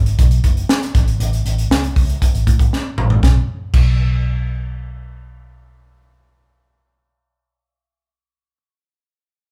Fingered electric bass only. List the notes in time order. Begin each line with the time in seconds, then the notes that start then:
Already playing: G#1
0.19 B1
0.44 F#1
0.95 A1
1.20 A1
1.45 A1
1.70 C#2
1.96 C#2
2.34 A1
2.47 A2
2.98 A1
3.23 B1
3.74 B1